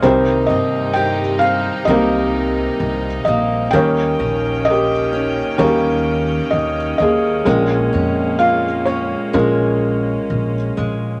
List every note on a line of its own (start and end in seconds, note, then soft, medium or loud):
0.00 0.42 C2 medium
0.00 3.69 C2 medium
0.00 3.69 C3 medium
0.00 3.72 D#3 medium
0.00 3.69 G3 medium
0.00 1.21 G3 medium
0.00 0.13 G#3 soft
0.00 7.41 A#3 medium
0.00 1.20 C4 medium
0.00 0.13 C#4 medium
0.00 3.69 D#4 medium
0.00 0.05 D#4 medium
0.00 0.13 F4 medium
0.00 1.21 A#4 medium
0.00 0.46 C5 medium
0.07 1.86 D#4 medium
0.07 1.86 G4 medium
0.46 1.67 G2 medium
0.46 1.40 C4 medium
0.46 0.91 D#5 medium
0.93 3.82 G4 medium
0.93 1.43 G5 medium
1.39 3.82 C4 medium
1.39 1.88 F5 medium
1.85 2.66 C2 medium
1.85 3.06 G3 medium
1.85 3.27 A#3 medium
1.85 3.23 D#5 medium
1.89 3.06 C4 medium
1.89 3.06 D#4 medium
1.89 3.70 G4 medium
1.89 3.06 A#4 medium
2.80 3.20 C2 medium
3.25 3.65 A#1 medium
3.25 5.58 A#3 medium
3.25 3.74 D#5 medium
3.71 4.12 D#2 medium
3.71 7.42 D#2 medium
3.71 7.46 D#3 medium
3.71 7.42 D#3 medium
3.71 4.91 G3 medium
3.71 4.91 C#4 medium
3.71 11.20 C#4 medium
3.71 4.91 D#4 medium
3.71 4.68 A#4 medium
3.71 4.67 G5 medium
3.71 7.42 G5 medium
3.76 5.57 C#5 medium
4.19 5.38 A#1 medium
4.19 5.12 C#4 soft
4.65 5.55 D#5 medium
4.70 5.62 G4 medium
4.70 5.57 A#4 medium
5.13 7.55 C#4 medium
5.58 6.38 D#2 medium
5.58 6.77 G3 medium
5.58 6.99 A#3 medium
5.58 6.77 C#4 medium
5.58 6.77 D#4 medium
5.58 5.62 A#4 medium
5.58 6.55 C#5 medium
5.63 7.44 G4 medium
5.63 7.44 A#4 medium
6.51 6.92 D#2 medium
6.51 6.96 D#5 medium
6.98 7.39 D#2 medium
6.98 7.46 A#3 medium
6.98 8.43 D#5 medium
7.02 8.84 G#4 medium
7.45 11.20 A#1 medium
7.45 7.86 A#1 medium
7.45 11.20 A#2 medium
7.45 8.64 G#3 medium
7.45 9.32 G#3 medium
7.45 11.20 G#3 medium
7.45 11.20 A#3 medium
7.45 8.65 C#4 medium
7.45 8.64 F4 medium
7.45 8.64 A#4 medium
7.93 9.13 F2 medium
7.93 8.85 C#4 soft
8.39 11.20 F4 medium
8.39 8.83 F5 medium
8.85 11.20 C#4 medium
8.85 9.35 C#5 medium
9.33 10.15 A#1 medium
9.33 10.76 G#3 medium
9.33 10.55 G#3 medium
9.33 10.55 C#4 medium
9.33 10.55 F4 medium
9.33 10.25 A#4 medium
10.30 10.70 A#1 medium
10.77 11.17 A#1 medium
10.77 11.20 G#3 soft